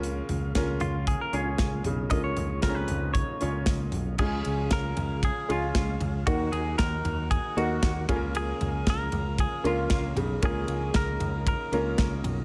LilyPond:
<<
  \new Staff \with { instrumentName = "Clean electric guitar" } { \time 4/4 \key bes \phrygian \tempo 4 = 116 r4. f'8 aes'16 bes'16 aes'4 r8 | ees''16 des''8. bes'16 ces''8. des''4 r4 | aes'4 bes'4 aes'8 f'4 r8 | ges'8 aes'8 bes'4 aes'8 ges'4 r8 |
aes'4 bes'4 aes'8 f'4 r8 | aes'4 bes'4 bes'4. r8 | }
  \new Staff \with { instrumentName = "Upright piano" } { \time 4/4 \key bes \phrygian <des' f' bes'>4 <des' f' bes'>4. <des' f' des''>4. | <des' f' bes'>4 <c' des' f' bes''>4. <des' f' des''>4. | <aes des' f' aes'>2 r8 <aes des' f' aes'>4. | <bes ees' ges' bes'>2 r8 <bes ees' ges' bes'>4 <bes des' f' aes' bes'>8~ |
<bes des' f' aes' bes'>4. r4 <bes des' f' bes'>4. | <bes des' f' bes'>2 r8 <bes des' f' bes'>4. | }
  \new Staff \with { instrumentName = "Upright piano" } { \clef bass \time 4/4 \key bes \phrygian des4 r2 r8 des8~ | des4 r2. | des4. r2 r8 | ees4. r2 des8~ |
des4 r2 r8 des8~ | des4 r2. | }
  \new Staff \with { instrumentName = "Tonewheel organ" } { \time 4/4 \key bes \phrygian f'2.~ f'8 ees'8~ | ees'1 | f'1 | ges'2.~ ges'8 f'8~ |
f'2.~ f'8 ees'8~ | ees'1 | }
  \new Staff \with { instrumentName = "Tonewheel organ" } { \clef bass \time 4/4 \key bes \phrygian << { bes,1~ | bes,1 | aes1 | bes1~ |
bes1~ | bes1 | } \\ { <des f>1~ | <des f>1 | <des f>1 | <ees ges>2.~ <ees ges>8 <des f>8~ |
<des f>1~ | <des f>1 | } >> }
  \new Staff \with { instrumentName = "Picked electric bass" } { \clef bass \time 4/4 \key bes \phrygian des,8 des,8 des,8 des,8. r16 des,8 des,8 ces,8 | des,8 des,8 des,8 des,8. r16 des,8 des,8 ces,8 | des,8 des,8 des,8 des,8. r16 des,8 des,8 des,8 | ees,8 ees,8 ees,8 ees,8. r16 ees,8 ees,8 des,8~ |
des,8 des,8 des,8 des,8. r16 des,8 des,8 ces,8 | des,8 des,8 des,8 des,8. r16 des,8 des,8 ces,8 | }
  \new DrumStaff \with { instrumentName = "Drums" } \drummode { \time 4/4 hh8 <hh tomfh>8 <hh bd sn>8 <hh tomfh>8 <hh bd>8 hh8 <hh bd sn>8 <hh tomfh>8 | <hh bd>8 <hh tomfh>8 <hh bd sn>8 <hh tomfh>8 <hh bd>8 hh8 <hh bd sn>8 <hh tomfh>8 | <cymc bd>8 cymr8 <bd cymr sn>8 <cymr tomfh>8 <bd cymr>8 cymr8 <bd cymr sn>8 <cymr tomfh>8 | <bd cymr>8 cymr8 <bd cymr sn>8 <cymr tomfh>8 <bd cymr>8 cymr8 <bd cymr sn>8 <bd cymr tomfh>8 |
cymr8 <cymr tomfh>8 <bd cymr sn>8 <cymr tomfh>8 <bd cymr>8 cymr8 <bd cymr sn>8 <cymr tomfh>8 | <bd cymr>8 cymr8 <bd cymr sn>8 <cymr tomfh>8 <bd cymr>8 cymr8 <bd cymr sn>8 <cymr tomfh>8 | }
>>